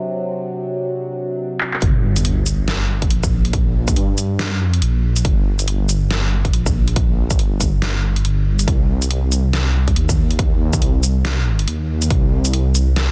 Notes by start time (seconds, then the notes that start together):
Already playing: C3 F#3 D4
1.61 clap
1.74 clap
1.82 G1, kick, closed hi-hat, sub drop
2.16 closed hi-hat, shaker
2.25 closed hi-hat
2.46 closed hi-hat, shaker
2.68 snare, closed hi-hat
3.02 kick, closed hi-hat
3.10 A#1, closed hi-hat
3.23 kick, shaker
3.45 closed hi-hat
3.53 kick, closed hi-hat
3.88 kick, closed hi-hat, shaker
3.96 G2, closed hi-hat
4.18 closed hi-hat, shaker
4.39 snare, closed hi-hat
4.56 F#2
4.74 closed hi-hat
4.82 A#1, closed hi-hat
5.16 closed hi-hat, shaker
5.25 G1, kick, closed hi-hat
5.59 closed hi-hat, shaker
5.68 closed hi-hat
5.89 closed hi-hat, shaker
6.11 snare, closed hi-hat
6.45 kick, closed hi-hat
6.53 A#1, closed hi-hat
6.66 kick, shaker
6.88 closed hi-hat
6.96 kick, closed hi-hat
7.30 kick, closed hi-hat, shaker
7.39 G1, closed hi-hat
7.61 kick, closed hi-hat, shaker
7.82 snare, closed hi-hat
8.16 closed hi-hat
8.25 G1, closed hi-hat
8.59 closed hi-hat, shaker
8.68 C2, kick, closed hi-hat
9.02 closed hi-hat, shaker
9.11 closed hi-hat
9.32 closed hi-hat, shaker
9.53 snare, closed hi-hat
9.88 kick, closed hi-hat
9.96 D#2, closed hi-hat
10.09 kick, shaker
10.31 closed hi-hat
10.39 kick, closed hi-hat
10.73 kick, closed hi-hat, shaker
10.82 C2, closed hi-hat
11.03 closed hi-hat, shaker
11.25 snare, closed hi-hat
11.59 closed hi-hat
11.68 D#2, closed hi-hat
12.02 closed hi-hat, shaker
12.10 C2, kick, closed hi-hat
12.45 closed hi-hat, shaker
12.53 closed hi-hat
12.75 closed hi-hat, shaker
12.96 snare, closed hi-hat